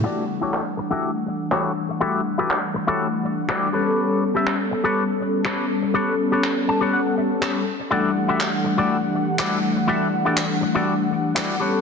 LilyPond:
<<
  \new Staff \with { instrumentName = "Clean electric guitar" } { \time 4/4 \key e \dorian \tempo 4 = 122 << { r1 | r1 | r1 | r4. a''8 fis''8 e''8 cis''4 |
r1 | r1 | } \\ { <e' fis' g' a' d''>8 r16 <e' fis' g' a' cis''>16 r8. <e' fis' g' a' e''>16 r4 <e' fis' g' a' cis''>8 r8 | <e' fis' g' a' e''>8 r16 <e' fis' g' a' b'>16 r8. <e' fis' g' a' cis''>16 r4 <e' fis' g' a' d''>8 <g' a' b' cis''>8~ | <g' a' b' cis''>8 r16 <g' a' b' e''>16 r8. <g' a' b' cis''>16 r4 <g' a' b' cis''>8 r8 | <g' a' b' cis''>8 r16 <g' a' b' cis''>16 r8. <g' a' b' cis''>16 r4 <g' a' b' cis''>8 r8 |
<e' fis' g' a' d''>8 r16 <e' fis' g' a' e''>16 r8. <e' fis' g' a' d''>16 r4 <e' fis' g' a' d''>8 r8 | <e' fis' g' a' e''>8 r16 <e' fis' g' a' d''>16 r8. <e' fis' g' a' d''>16 r4 <e' fis' g' a' d''>8 <g' a' b' cis''>8 | } >> }
  \new Staff \with { instrumentName = "Analog polysynth" } { \time 4/4 \key e \dorian <g a d' fis''>1~ | <g a d' fis''>2.~ <g a d' fis''>8 <g b cis' a'>8~ | <g b cis' a'>1~ | <g b cis' a'>2.~ <g b cis' a'>8 r8 |
<e g a d' fis''>1~ | <e g a d' fis''>2.~ <e g a d' fis''>8 <g b cis' a'>8 | }
  \new DrumStaff \with { instrumentName = "Drums" } \drummode { \time 4/4 r4 hc4 r4 hc4 | r4 hc4 r4 hc4 | r4 hc4 r4 hc4 | r4 hc4 r4 hc4 |
r4 hc4 r4 hc4 | r4 hc4 r4 hc4 | }
>>